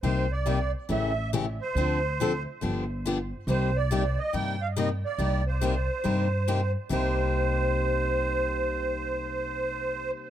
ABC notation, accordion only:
X:1
M:4/4
L:1/8
Q:"Swing" 1/4=140
K:Cm
V:1 name="Accordion"
c d2 z =e2 z c- | c3 z4 z | c d2 e g f e d- | d c6 z |
c8- | c8 |]